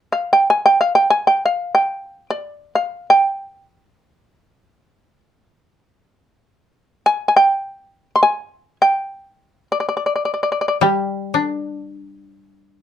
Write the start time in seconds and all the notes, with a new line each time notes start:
0.12 F5
0.33 G5
0.50 G#5
0.66 G5
0.81 F5
0.95 G5
1.10 G#5
1.27 G5
1.46 F5
1.75 G5
2.30 D5
2.75 F5
3.10 G5
7.06 G#5
7.28 G#5
7.37 G5
8.16 C6
8.23 G#5
8.82 G5
9.72 D5
9.80 D5
9.89 D5
9.97 D5
10.06 D5
10.16 D5
10.25 D5
10.34 D5
10.43 D5
10.52 D5
10.61 D5
10.68 D5
10.81 G3 G4
11.34 D4